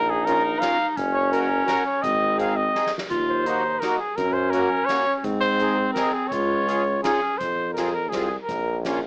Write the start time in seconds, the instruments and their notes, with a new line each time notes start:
Already playing: tuba A#1, clarinet D#4, trumpet A#4
0.10 trumpet G#4
0.25 accordion C#4 F4 A#4, trumpet A#4, closed hi-hat
0.60 accordion C#4 F4 A#4, trumpet F5, snare, closed hi-hat
0.97 tuba F#1, clarinet C#4, kick, closed hi-hat
1.14 trumpet C#5
1.31 accordion C#4 F#4 A#4, trumpet A#4, closed hi-hat
1.66 accordion C#4 F#4 A#4, trumpet A#4, snare, closed hi-hat
1.86 trumpet C#5
2.02 tuba G#1, clarinet C4, trumpet D#5, kick, closed hi-hat
2.37 accordion C4 D#4 G#4, trumpet F5, closed hi-hat
2.56 trumpet D#5
2.74 accordion C4 D#4 G#4, snare
2.86 snare
2.98 snare
3.10 tuba D#2, clarinet F4, kick, closed hi-hat
3.30 trumpet C5
3.46 accordion A#3 D#4 F#4, clarinet D#4, closed hi-hat
3.80 accordion A#3 D#4 F#4, trumpet A#4, snare, closed hi-hat
3.99 trumpet G#4
4.16 tuba F#2, clarinet C#4, trumpet A#4, kick, closed hi-hat
4.33 trumpet C5
4.50 accordion A#3 C#4 F#4, trumpet A#4, closed hi-hat
4.85 accordion A#3 C#4 F#4, trumpet C#5, snare, closed hi-hat
5.24 tuba G#2, clarinet C4, kick, closed hi-hat
5.40 trumpet C5
5.59 accordion C4 D#4 G#4, closed hi-hat
5.94 accordion C4 D#4 G#4, trumpet A#4, snare, closed hi-hat
6.13 trumpet G#4
6.28 tuba C#2, trumpet C#5, kick, closed hi-hat
6.32 clarinet F4
6.66 accordion C#4 F4 G#4, closed hi-hat
7.03 accordion C#4 F4 G#4, clarinet D#4, trumpet G#4, snare, closed hi-hat
7.21 clarinet C#4
7.38 tuba F2, trumpet C5, kick, closed hi-hat
7.73 accordion C4 F4, trumpet A#4, snare, closed hi-hat
7.77 accordion G#4
7.93 trumpet A#4
8.09 tuba C2, accordion C4 F4, trumpet G#4, snare, closed hi-hat
8.14 accordion G#4
8.27 trumpet G#4
8.43 trumpet A#4
8.48 tuba A#1, kick, closed hi-hat
8.84 accordion A#3 C#4 F4, snare, closed hi-hat